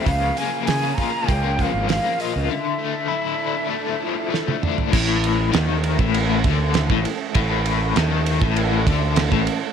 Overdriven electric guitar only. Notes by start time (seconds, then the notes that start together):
Already playing: F3 F4
0.05 C#3
0.36 A#3
0.67 G#4
0.97 F4
1.28 A#3
1.57 F3
1.89 A#3
2.18 F4
2.50 D3
2.79 A3
3.08 E4
3.38 D4
3.69 A3
4.00 F3
4.30 A3
4.62 D4
4.92 A2
5.52 D#3
5.99 A2
6.46 D3
6.91 A2
7.36 A2
7.97 D#3
8.42 A2
8.87 D3
9.31 A2